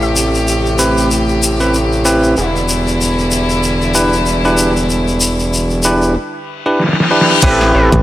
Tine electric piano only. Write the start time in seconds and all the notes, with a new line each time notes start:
0.79 C4 E4 G4 B4
1.60 C4 E4 G4 B4
2.05 C4 E4 G4 B4
3.95 D4 E4 G4 B4
4.45 D4 E4 G4 B4
5.85 D4 E4 G4 B4
6.66 D4 E4 G4 B4
7.11 D4 E4 G4 B4
7.43 C4 E4 G4 B4